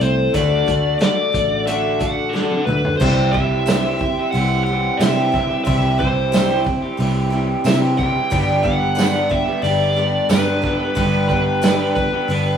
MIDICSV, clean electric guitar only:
0, 0, Header, 1, 3, 480
1, 0, Start_track
1, 0, Tempo, 664452
1, 243, Time_signature, 4, 2, 24, 8
1, 9084, End_track
2, 0, Start_track
2, 0, Title_t, "Clean electric guitar"
2, 0, Program_c, 0, 27
2, 0, Note_on_c, 0, 45, 79
2, 0, Note_on_c, 0, 52, 73
2, 0, Note_on_c, 0, 57, 77
2, 0, Note_on_c, 0, 60, 87
2, 0, Note_on_c, 0, 64, 88
2, 225, Note_off_c, 0, 45, 0
2, 229, Note_off_c, 0, 52, 0
2, 233, Note_off_c, 0, 57, 0
2, 236, Note_off_c, 0, 60, 0
2, 238, Note_off_c, 0, 64, 0
2, 239, Note_on_c, 0, 50, 97
2, 247, Note_on_c, 0, 57, 98
2, 256, Note_on_c, 0, 62, 99
2, 264, Note_on_c, 0, 66, 102
2, 1191, Note_off_c, 0, 50, 0
2, 1195, Note_off_c, 0, 57, 0
2, 1199, Note_off_c, 0, 62, 0
2, 1200, Note_on_c, 0, 50, 69
2, 1203, Note_off_c, 0, 66, 0
2, 1211, Note_on_c, 0, 57, 81
2, 1218, Note_on_c, 0, 62, 89
2, 1229, Note_on_c, 0, 66, 86
2, 2152, Note_off_c, 0, 50, 0
2, 2157, Note_off_c, 0, 57, 0
2, 2161, Note_off_c, 0, 62, 0
2, 2166, Note_off_c, 0, 66, 0
2, 2167, Note_on_c, 0, 48, 87
2, 2174, Note_on_c, 0, 52, 87
2, 2181, Note_on_c, 0, 55, 99
2, 2185, Note_on_c, 0, 60, 101
2, 2192, Note_on_c, 0, 67, 101
2, 2403, Note_off_c, 0, 52, 0
2, 2406, Note_on_c, 0, 52, 77
2, 2411, Note_off_c, 0, 55, 0
2, 2414, Note_on_c, 0, 55, 81
2, 2420, Note_off_c, 0, 60, 0
2, 2423, Note_on_c, 0, 60, 75
2, 2429, Note_off_c, 0, 67, 0
2, 2432, Note_on_c, 0, 67, 81
2, 2643, Note_off_c, 0, 48, 0
2, 2646, Note_on_c, 0, 48, 94
2, 2654, Note_off_c, 0, 52, 0
2, 2656, Note_on_c, 0, 52, 90
2, 2659, Note_off_c, 0, 55, 0
2, 2662, Note_on_c, 0, 55, 95
2, 2664, Note_off_c, 0, 60, 0
2, 2667, Note_on_c, 0, 60, 93
2, 2669, Note_off_c, 0, 67, 0
2, 2672, Note_on_c, 0, 67, 104
2, 2773, Note_off_c, 0, 67, 0
2, 2776, Note_on_c, 0, 67, 77
2, 2786, Note_off_c, 0, 60, 0
2, 2788, Note_on_c, 0, 60, 65
2, 2798, Note_off_c, 0, 55, 0
2, 2801, Note_on_c, 0, 55, 59
2, 2899, Note_off_c, 0, 52, 0
2, 2901, Note_off_c, 0, 55, 0
2, 2904, Note_off_c, 0, 60, 0
2, 2904, Note_off_c, 0, 67, 0
2, 3014, Note_on_c, 0, 67, 73
2, 3030, Note_on_c, 0, 60, 63
2, 3037, Note_on_c, 0, 55, 59
2, 3135, Note_on_c, 0, 52, 86
2, 3142, Note_off_c, 0, 55, 0
2, 3142, Note_off_c, 0, 60, 0
2, 3145, Note_on_c, 0, 55, 77
2, 3150, Note_on_c, 0, 60, 86
2, 3154, Note_off_c, 0, 67, 0
2, 3157, Note_on_c, 0, 67, 84
2, 3367, Note_off_c, 0, 52, 0
2, 3376, Note_on_c, 0, 52, 74
2, 3381, Note_off_c, 0, 60, 0
2, 3383, Note_off_c, 0, 55, 0
2, 3386, Note_on_c, 0, 55, 81
2, 3390, Note_on_c, 0, 60, 78
2, 3396, Note_off_c, 0, 67, 0
2, 3399, Note_on_c, 0, 67, 87
2, 3619, Note_off_c, 0, 48, 0
2, 3619, Note_off_c, 0, 52, 0
2, 3622, Note_on_c, 0, 48, 87
2, 3628, Note_off_c, 0, 60, 0
2, 3628, Note_on_c, 0, 52, 91
2, 3632, Note_off_c, 0, 55, 0
2, 3635, Note_on_c, 0, 55, 94
2, 3636, Note_on_c, 0, 60, 94
2, 3639, Note_off_c, 0, 67, 0
2, 3642, Note_on_c, 0, 67, 97
2, 3734, Note_off_c, 0, 67, 0
2, 3737, Note_on_c, 0, 67, 70
2, 3744, Note_off_c, 0, 60, 0
2, 3752, Note_on_c, 0, 60, 60
2, 3757, Note_off_c, 0, 55, 0
2, 3760, Note_on_c, 0, 55, 59
2, 3853, Note_off_c, 0, 52, 0
2, 3862, Note_on_c, 0, 52, 77
2, 3869, Note_off_c, 0, 55, 0
2, 3870, Note_off_c, 0, 60, 0
2, 3871, Note_on_c, 0, 55, 70
2, 3879, Note_on_c, 0, 60, 75
2, 3883, Note_off_c, 0, 67, 0
2, 3886, Note_on_c, 0, 67, 81
2, 3976, Note_off_c, 0, 48, 0
2, 3978, Note_off_c, 0, 67, 0
2, 3981, Note_on_c, 0, 67, 69
2, 3984, Note_off_c, 0, 60, 0
2, 3993, Note_on_c, 0, 60, 60
2, 4001, Note_off_c, 0, 55, 0
2, 4004, Note_on_c, 0, 55, 51
2, 4095, Note_off_c, 0, 52, 0
2, 4098, Note_on_c, 0, 48, 92
2, 4104, Note_on_c, 0, 52, 103
2, 4108, Note_off_c, 0, 55, 0
2, 4108, Note_off_c, 0, 60, 0
2, 4111, Note_on_c, 0, 55, 95
2, 4116, Note_on_c, 0, 60, 108
2, 4119, Note_off_c, 0, 67, 0
2, 4122, Note_on_c, 0, 67, 99
2, 4329, Note_off_c, 0, 52, 0
2, 4337, Note_on_c, 0, 52, 75
2, 4342, Note_off_c, 0, 55, 0
2, 4343, Note_off_c, 0, 60, 0
2, 4345, Note_on_c, 0, 55, 77
2, 4351, Note_on_c, 0, 60, 73
2, 4361, Note_off_c, 0, 67, 0
2, 4364, Note_on_c, 0, 67, 83
2, 4564, Note_off_c, 0, 48, 0
2, 4571, Note_off_c, 0, 52, 0
2, 4572, Note_on_c, 0, 48, 90
2, 4580, Note_off_c, 0, 60, 0
2, 4580, Note_on_c, 0, 52, 99
2, 4581, Note_off_c, 0, 55, 0
2, 4584, Note_on_c, 0, 55, 98
2, 4589, Note_on_c, 0, 60, 106
2, 4596, Note_off_c, 0, 67, 0
2, 4599, Note_on_c, 0, 67, 106
2, 4687, Note_off_c, 0, 67, 0
2, 4689, Note_on_c, 0, 67, 84
2, 4692, Note_off_c, 0, 60, 0
2, 4701, Note_on_c, 0, 60, 67
2, 4710, Note_off_c, 0, 55, 0
2, 4713, Note_on_c, 0, 55, 63
2, 4810, Note_off_c, 0, 52, 0
2, 4813, Note_off_c, 0, 60, 0
2, 4817, Note_off_c, 0, 55, 0
2, 4821, Note_off_c, 0, 67, 0
2, 4928, Note_on_c, 0, 67, 78
2, 4931, Note_off_c, 0, 48, 0
2, 4941, Note_on_c, 0, 60, 65
2, 4953, Note_on_c, 0, 55, 62
2, 5048, Note_on_c, 0, 52, 76
2, 5053, Note_off_c, 0, 55, 0
2, 5056, Note_off_c, 0, 60, 0
2, 5056, Note_on_c, 0, 55, 76
2, 5064, Note_on_c, 0, 60, 77
2, 5072, Note_off_c, 0, 67, 0
2, 5075, Note_on_c, 0, 67, 90
2, 5274, Note_off_c, 0, 52, 0
2, 5283, Note_on_c, 0, 52, 74
2, 5292, Note_off_c, 0, 55, 0
2, 5293, Note_off_c, 0, 60, 0
2, 5295, Note_on_c, 0, 55, 82
2, 5302, Note_on_c, 0, 60, 79
2, 5305, Note_off_c, 0, 67, 0
2, 5308, Note_on_c, 0, 67, 79
2, 5523, Note_off_c, 0, 52, 0
2, 5523, Note_on_c, 0, 48, 82
2, 5531, Note_off_c, 0, 60, 0
2, 5532, Note_on_c, 0, 52, 98
2, 5533, Note_off_c, 0, 55, 0
2, 5536, Note_on_c, 0, 55, 93
2, 5539, Note_on_c, 0, 60, 97
2, 5543, Note_off_c, 0, 67, 0
2, 5546, Note_on_c, 0, 67, 107
2, 5643, Note_off_c, 0, 67, 0
2, 5646, Note_on_c, 0, 67, 70
2, 5650, Note_off_c, 0, 60, 0
2, 5658, Note_on_c, 0, 60, 62
2, 5670, Note_off_c, 0, 55, 0
2, 5673, Note_on_c, 0, 55, 59
2, 5760, Note_off_c, 0, 52, 0
2, 5769, Note_on_c, 0, 52, 84
2, 5774, Note_off_c, 0, 55, 0
2, 5776, Note_off_c, 0, 60, 0
2, 5777, Note_on_c, 0, 55, 82
2, 5785, Note_on_c, 0, 60, 80
2, 5787, Note_off_c, 0, 67, 0
2, 5789, Note_on_c, 0, 67, 84
2, 5885, Note_off_c, 0, 48, 0
2, 5886, Note_off_c, 0, 67, 0
2, 5889, Note_on_c, 0, 67, 66
2, 5891, Note_off_c, 0, 60, 0
2, 5900, Note_on_c, 0, 60, 59
2, 5907, Note_off_c, 0, 55, 0
2, 5910, Note_on_c, 0, 55, 53
2, 5993, Note_off_c, 0, 52, 0
2, 5999, Note_off_c, 0, 60, 0
2, 6002, Note_on_c, 0, 43, 87
2, 6008, Note_on_c, 0, 50, 93
2, 6014, Note_off_c, 0, 55, 0
2, 6014, Note_on_c, 0, 55, 102
2, 6017, Note_on_c, 0, 59, 103
2, 6021, Note_off_c, 0, 67, 0
2, 6023, Note_on_c, 0, 62, 113
2, 6024, Note_on_c, 0, 67, 97
2, 6236, Note_off_c, 0, 55, 0
2, 6239, Note_on_c, 0, 55, 74
2, 6246, Note_off_c, 0, 59, 0
2, 6249, Note_on_c, 0, 59, 79
2, 6252, Note_off_c, 0, 62, 0
2, 6255, Note_on_c, 0, 62, 77
2, 6262, Note_off_c, 0, 67, 0
2, 6265, Note_on_c, 0, 67, 76
2, 6481, Note_off_c, 0, 50, 0
2, 6483, Note_off_c, 0, 43, 0
2, 6486, Note_on_c, 0, 43, 88
2, 6490, Note_on_c, 0, 50, 93
2, 6492, Note_off_c, 0, 55, 0
2, 6495, Note_on_c, 0, 55, 96
2, 6498, Note_off_c, 0, 59, 0
2, 6498, Note_off_c, 0, 62, 0
2, 6501, Note_on_c, 0, 59, 102
2, 6501, Note_on_c, 0, 62, 107
2, 6507, Note_off_c, 0, 67, 0
2, 6509, Note_on_c, 0, 67, 102
2, 6602, Note_off_c, 0, 67, 0
2, 6605, Note_on_c, 0, 67, 77
2, 6611, Note_off_c, 0, 62, 0
2, 6613, Note_on_c, 0, 62, 68
2, 6615, Note_off_c, 0, 59, 0
2, 6618, Note_on_c, 0, 59, 66
2, 6627, Note_off_c, 0, 55, 0
2, 6630, Note_on_c, 0, 55, 63
2, 6725, Note_off_c, 0, 59, 0
2, 6726, Note_off_c, 0, 55, 0
2, 6730, Note_off_c, 0, 62, 0
2, 6733, Note_off_c, 0, 67, 0
2, 6836, Note_on_c, 0, 67, 77
2, 6847, Note_off_c, 0, 50, 0
2, 6848, Note_on_c, 0, 62, 68
2, 6854, Note_on_c, 0, 59, 62
2, 6860, Note_on_c, 0, 55, 62
2, 6954, Note_off_c, 0, 55, 0
2, 6957, Note_on_c, 0, 55, 74
2, 6964, Note_off_c, 0, 59, 0
2, 6967, Note_on_c, 0, 59, 79
2, 6972, Note_off_c, 0, 62, 0
2, 6975, Note_on_c, 0, 62, 80
2, 6981, Note_off_c, 0, 67, 0
2, 6984, Note_on_c, 0, 67, 91
2, 7192, Note_off_c, 0, 55, 0
2, 7195, Note_on_c, 0, 55, 76
2, 7202, Note_off_c, 0, 59, 0
2, 7205, Note_on_c, 0, 59, 83
2, 7208, Note_off_c, 0, 62, 0
2, 7211, Note_on_c, 0, 62, 85
2, 7218, Note_off_c, 0, 67, 0
2, 7221, Note_on_c, 0, 67, 81
2, 7435, Note_off_c, 0, 43, 0
2, 7437, Note_on_c, 0, 43, 97
2, 7444, Note_off_c, 0, 55, 0
2, 7445, Note_on_c, 0, 50, 100
2, 7447, Note_on_c, 0, 55, 88
2, 7452, Note_off_c, 0, 59, 0
2, 7453, Note_off_c, 0, 62, 0
2, 7455, Note_on_c, 0, 59, 91
2, 7456, Note_on_c, 0, 62, 98
2, 7460, Note_off_c, 0, 67, 0
2, 7463, Note_on_c, 0, 67, 96
2, 7557, Note_off_c, 0, 67, 0
2, 7560, Note_on_c, 0, 67, 75
2, 7565, Note_off_c, 0, 62, 0
2, 7568, Note_on_c, 0, 62, 76
2, 7572, Note_off_c, 0, 59, 0
2, 7575, Note_on_c, 0, 59, 63
2, 7581, Note_off_c, 0, 55, 0
2, 7584, Note_on_c, 0, 55, 57
2, 7677, Note_off_c, 0, 55, 0
2, 7680, Note_on_c, 0, 55, 74
2, 7687, Note_off_c, 0, 59, 0
2, 7690, Note_on_c, 0, 59, 83
2, 7696, Note_off_c, 0, 62, 0
2, 7698, Note_on_c, 0, 62, 75
2, 7701, Note_off_c, 0, 67, 0
2, 7704, Note_on_c, 0, 67, 72
2, 7794, Note_off_c, 0, 67, 0
2, 7797, Note_on_c, 0, 67, 74
2, 7799, Note_off_c, 0, 43, 0
2, 7803, Note_off_c, 0, 50, 0
2, 7806, Note_off_c, 0, 62, 0
2, 7809, Note_on_c, 0, 62, 66
2, 7811, Note_off_c, 0, 59, 0
2, 7814, Note_on_c, 0, 59, 63
2, 7818, Note_off_c, 0, 55, 0
2, 7821, Note_on_c, 0, 55, 57
2, 7926, Note_on_c, 0, 43, 90
2, 7930, Note_on_c, 0, 50, 102
2, 7934, Note_off_c, 0, 55, 0
2, 7937, Note_on_c, 0, 55, 107
2, 7939, Note_off_c, 0, 59, 0
2, 7941, Note_off_c, 0, 62, 0
2, 7942, Note_on_c, 0, 59, 96
2, 7943, Note_on_c, 0, 62, 98
2, 7948, Note_off_c, 0, 67, 0
2, 7951, Note_on_c, 0, 67, 98
2, 8158, Note_off_c, 0, 55, 0
2, 8161, Note_on_c, 0, 55, 71
2, 8166, Note_off_c, 0, 59, 0
2, 8169, Note_on_c, 0, 59, 78
2, 8176, Note_off_c, 0, 62, 0
2, 8179, Note_on_c, 0, 62, 83
2, 8184, Note_off_c, 0, 67, 0
2, 8187, Note_on_c, 0, 67, 91
2, 8387, Note_off_c, 0, 43, 0
2, 8395, Note_off_c, 0, 50, 0
2, 8396, Note_on_c, 0, 43, 87
2, 8404, Note_on_c, 0, 50, 91
2, 8406, Note_off_c, 0, 55, 0
2, 8408, Note_off_c, 0, 59, 0
2, 8408, Note_on_c, 0, 55, 99
2, 8411, Note_on_c, 0, 59, 108
2, 8413, Note_off_c, 0, 62, 0
2, 8416, Note_on_c, 0, 62, 99
2, 8420, Note_off_c, 0, 67, 0
2, 8423, Note_on_c, 0, 67, 108
2, 8512, Note_off_c, 0, 67, 0
2, 8515, Note_on_c, 0, 67, 76
2, 8521, Note_off_c, 0, 62, 0
2, 8524, Note_on_c, 0, 62, 71
2, 8531, Note_off_c, 0, 59, 0
2, 8534, Note_on_c, 0, 59, 69
2, 8536, Note_off_c, 0, 55, 0
2, 8538, Note_on_c, 0, 55, 68
2, 8639, Note_off_c, 0, 55, 0
2, 8640, Note_off_c, 0, 59, 0
2, 8642, Note_off_c, 0, 67, 0
2, 8643, Note_off_c, 0, 62, 0
2, 8757, Note_off_c, 0, 43, 0
2, 8759, Note_on_c, 0, 67, 70
2, 8761, Note_off_c, 0, 50, 0
2, 8763, Note_on_c, 0, 62, 65
2, 8773, Note_on_c, 0, 59, 63
2, 8782, Note_on_c, 0, 55, 54
2, 8869, Note_off_c, 0, 55, 0
2, 8872, Note_on_c, 0, 55, 81
2, 8880, Note_off_c, 0, 59, 0
2, 8883, Note_on_c, 0, 59, 78
2, 8887, Note_off_c, 0, 62, 0
2, 8890, Note_on_c, 0, 62, 82
2, 8894, Note_off_c, 0, 67, 0
2, 8897, Note_on_c, 0, 67, 87
2, 9084, Note_off_c, 0, 55, 0
2, 9084, Note_off_c, 0, 59, 0
2, 9084, Note_off_c, 0, 62, 0
2, 9084, Note_off_c, 0, 67, 0
2, 9084, End_track
3, 0, Start_track
3, 0, Title_t, "Muted clean electric guitar strokes"
3, 2902, Note_on_c, 9, 29, 46
3, 2975, Note_off_c, 9, 29, 0
3, 4819, Note_on_c, 9, 29, 43
3, 4891, Note_off_c, 9, 29, 0
3, 6728, Note_on_c, 9, 29, 46
3, 6800, Note_off_c, 9, 29, 0
3, 8642, Note_on_c, 9, 29, 45
3, 8714, Note_off_c, 9, 29, 0
3, 9084, End_track
0, 0, End_of_file